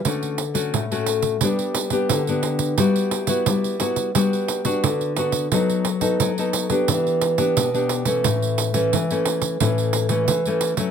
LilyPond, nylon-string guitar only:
\new Staff \with { instrumentName = "Nylon-string guitar" } { \time 4/4 \key d \major \tempo 4 = 88 << { <a cis' fis'>8 r16 <a cis' fis'>8 <a cis' fis'>8. <b d' g'>8. <b d' g'>8 <b d' g'>8. | <b e' fis'>8. <b e' fis'>8. <b e' fis'>8 <b d' fis'>8. <b d' fis'>8. <b d' fis'>8 | <b dis' a'>8 r16 <b dis' a'>8 <b dis' a'>8 <b d' g'>4 <b d' g'>8 <b d' g'>8 <e a cis'>16~ | <e a cis'>8. <e a cis'>8 <e a cis'>8. <e a cis'>8. <e a cis'>8 <e a cis'>8 <fis a cis'>16 | } \\ { d4 a,4 g4 d4 | g4 g4 g4 d4 | fis4 fis4 e4 b,4 | a,4 e4 a,4 e4 | } >> }